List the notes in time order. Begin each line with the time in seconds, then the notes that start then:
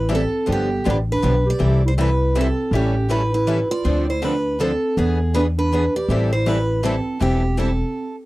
Already playing: A1 E4 B4
0.10 E3 G3 C4 E4 A4
0.15 A4
0.47 G1 D3 F3 B3 D4 G4
0.52 G4
0.84 A1 D3 F3 B3 D4 G4
0.90 B4
1.10 D4 B4
1.23 B1 D3 F3 B3 D4 G4
1.46 G4
1.50 D5
1.60 C2 C3 E3 G3 C4 E4 A4
1.85 E4 C5
1.97 C3 E3 G3 C4 E4 A4 B4
2.35 C3 E3 G3 C4 E4 A4
2.41 A4
2.71 A1 E3 G3 C#4 E4 G4 A4
3.09 E3 G3 C#4 E4 A4 B4
3.33 E4 B4
3.47 E3 G3 C#4 E4 A4
3.70 F4 D5
3.83 D2 D3 F3 C4 D4 A4
4.08 E4 C5
4.22 D3 F3 C4 D4 A4 B4
4.59 D3 F3 C4 D4 A4
4.97 E2 E3 B3 D4 G#4 B4
5.34 E3 B3 D4 G#4 B4
5.58 D4 B4
5.72 E3 B3 D4 G#4 B4
5.96 G4 D5
6.08 A1 E3 G3 C4 E4 A4
6.33 E4 C5
6.47 E3 G3 C4 E4 A4 B4
6.83 E3 G3 C4 E4 A4
7.19 E1 E3 G3 C4 E4 G4 A4
7.58 E3 G3 C4 E4 A4